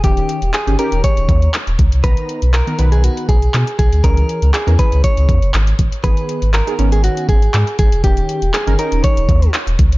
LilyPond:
<<
  \new Staff \with { instrumentName = "Clean electric guitar" } { \time 4/4 \key dis \phrygian \tempo 4 = 120 g'4 gis'8 ais'8 cis''4 r4 | b'4 ais'8. gis'16 fis'8 gis'4 gis'8 | ais'4 gis'8 b'8 cis''4 r4 | b'4 ais'8. gis'16 fis'8 gis'4 gis'8 |
g'4 gis'8 ais'8 cis''4 r4 | }
  \new Staff \with { instrumentName = "Synth keys" } { \time 4/4 \key dis \phrygian <dis cis' g'>8. r8 <dis cis' g'>16 <dis cis' g'>4~ <dis cis' g'>16 r4 r16 | <dis b ais''>8. r8 <dis b ais'>16 <dis b b'>4~ <dis b b'>16 r4 r16 | <e cis' gis'>8. r8 <e cis' ais'>16 <e cis' gis'>4~ <e cis' gis'>16 r4 r16 | <dis b gis'>8. r8 <dis b gis'>16 <dis b cis'>4~ <dis b cis'>16 r4 r16 |
<dis cis' g'>8. r8 <dis cis' ais'>16 <dis cis' dis'>4~ <dis cis' dis'>16 r4 r16 | }
  \new Staff \with { instrumentName = "Sub bass" } { \clef bass \time 4/4 \key dis \phrygian dis,,8 r16 dis,,16 r16 g,,16 r16 dis,,16 r16 dis,,16 dis,8 r16 dis,,16 cis,16 bis,,16 | b,,16 r8 b,,8 r16 b,,8. r16 b,,8 b,16 r16 b,,16 d,16 | cis,8 r16 cis,16 r16 e,16 r16 cis,16 r16 cis,16 e,16 fis,,16 gis,,8 a,,16 r16 | gis,,16 r8 gis,,8 r16 gis,,8. r16 gis,,8 gis,16 r16 gis,,16 e,,16 |
dis,,8 r16 dis,,16 r16 g,,16 r16 dis,,16 r16 dis,,16 dis,8 r16 dis,,16 cis,16 bis,,16 | }
  \new DrumStaff \with { instrumentName = "Drums" } \drummode { \time 4/4 <hh bd>16 hh16 hh16 hh16 <hc hh>16 hh16 hh16 hh16 <hh bd>16 hh16 <hh bd>16 hh16 <hc hh>16 hh16 <hh bd>16 hh16 | <hh bd>16 hh16 hh16 hh16 <hc hh>16 hh16 hh16 hh16 hh16 hh16 <hh bd>16 hh16 <hc hh>16 hh16 <hh bd>16 hh16 | <hh bd>16 hh16 hh16 hh16 <hc hh>16 hh16 <hh bd>16 hh16 <hh bd>16 hh16 <hh bd>16 hh16 <hc hh>16 hh16 <hh bd>16 hh16 | <hh bd>16 hh16 hh16 hh16 <hc hh>16 hh16 hh16 hh16 hh16 hh16 <hh bd>16 hh16 <hc hh>16 hh16 <hh bd>16 hh16 |
<hh bd>16 hh16 hh16 hh16 <hc hh>16 hh16 hh16 hh16 <hh bd>16 hh16 <hh bd>16 hh16 <hc hh>16 hh16 <hh bd>16 hh16 | }
>>